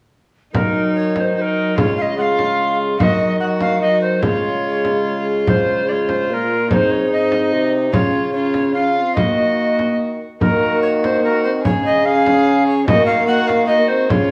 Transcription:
0.53 D#3 F#3 D#4 A#4, frame drum
0.95 C#5
1.16 C#5, frame drum
1.20 C5
1.36 F#3 D#4 C5
1.42 A#4
1.76 C#3 G#3 F4 C#5, frame drum
1.97 F5
2.02 D#5
2.18 G#3 F4 F5 F#5
2.39 frame drum
2.99 D#3 F#3 F#4 F5, frame drum
3.03 D#5
3.40 F#3 F#4 F#5
3.61 F5, frame drum
3.81 F#3 F#4 D#5
4.02 C5
4.22 C#3 G#3 F4 C#5, frame drum
4.85 frame drum
5.47 C5, frame drum
5.88 G#3 F4 D5
5.92 C#5
6.09 C5, frame drum
6.29 A#2 A#3 C5
6.33 A#4
6.70 G#2 C4 D#4 C#5, frame drum
6.75 C5
6.91 C#5
7.10 C4 D#4 D#5
7.32 frame drum
7.53 C3
7.92 C#3 C#4 F4 C#5, frame drum
8.33 C#4 F4 C#5
8.54 frame drum
8.74 C#4 F4 F5
8.96 C4
9.15 D#3 A#3 F#4 D#5, frame drum
9.79 frame drum
10.41 D#3 A#3 F#4 A#4, frame drum
10.82 C#5
11.04 C5, frame drum
11.23 A#3 F#4 A#4
11.44 C4 C5
11.63 C#3 C#4 G#4 C#5, frame drum
11.86 D#5
12.05 C#4 G#4 F5
12.26 frame drum
12.67 C#5
12.87 D#3 A#3 F#4 D#5, frame drum
13.06 F5
13.27 A#3 F#4 F#5
13.47 F5, frame drum
13.67 A#3 F#4 D#5
13.88 C4 C5
14.09 C#3 C#4 F4 C#5, frame drum

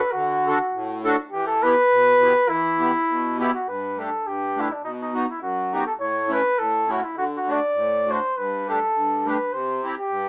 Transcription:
Already playing: B4
0.11 D3 F#4
0.47 D4 F#4 A4
0.73 A2
1.04 D4 F#4 A4
1.30 E3 G4
1.47 A4
1.63 B3 E4 G4 B4
1.90 B2
2.22 B3 E4 G4
2.48 E3 E4
2.79 B3 E4 G4
3.07 B2
3.39 B3 E4 G4
3.54 F#4
3.65 G2 B4
3.97 A3 D4 G4 A4
4.24 G2 G4
4.56 A3 D4 G4
4.60 E4
4.72 D4
4.81 B2 D#4
5.01 D#4
5.13 B3 D#4 F#4
5.30 E4
5.38 F#2 F#4
5.72 B3 D#4 F#4 G4
5.86 A4
5.97 A2 C#5
6.28 A3 C#4 E4 B4
6.57 A2 A4
6.88 A3 C#4 E4 F#4
7.03 E4
7.15 D3 F#4
7.36 F#4
7.46 A3 D4 F#4
7.51 D5
7.73 A2
8.07 A3 D4 F#4
8.11 C5
8.35 G2 B4
8.67 A3 D4 G4 A4
8.92 G2
9.25 A3 D4 G4 B4
9.52 C3 C5
9.83 C4 E4 G4
9.99 G4
10.08 G2

